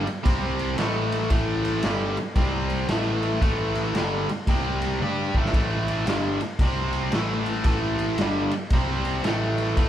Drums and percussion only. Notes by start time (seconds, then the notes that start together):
0.07 ride
0.25 kick, ride
0.59 ride
0.78 snare, ride
1.12 ride
1.30 kick, ride
1.65 ride
1.82 snare, ride
2.17 ride
2.36 kick, ride
2.70 ride
2.88 snare, ride
3.23 ride
3.42 kick, ride
3.75 ride
3.95 snare, ride
4.29 ride
4.47 kick, ride
4.82 ride
5.00 high tom
5.35 kick
5.46 snare
5.54 kick, ride
5.88 ride
6.07 snare, ride
6.41 ride
6.59 kick, ride
6.93 ride
7.12 snare, ride
7.46 ride
7.64 kick, ride
7.99 ride
8.18 snare, ride
8.51 ride
8.70 kick, ride
9.05 ride
9.24 snare, ride
9.58 ride
9.77 kick, ride